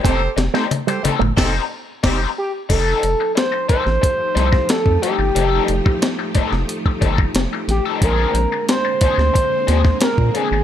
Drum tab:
CC |--------x---x---|x---------------|----------------|----------------|
HH |x-x-xxx---------|x-x-x-x-x-x-x-x-|x-x-x-x-x-x-x-x-|x-x-x-x-x-x-x-x-|
SD |o-oo----o---o---|----o--o--ooo---|----o--o----o-o-|----o--o--ooo---|
T1 |----o-o---------|----------------|----------------|----------------|
T2 |-------o--------|----------------|----------------|----------------|
BD |o-------o---o---|o-----o-o--o-o--|---o--o--ooo----|o-----o-o--o-o--|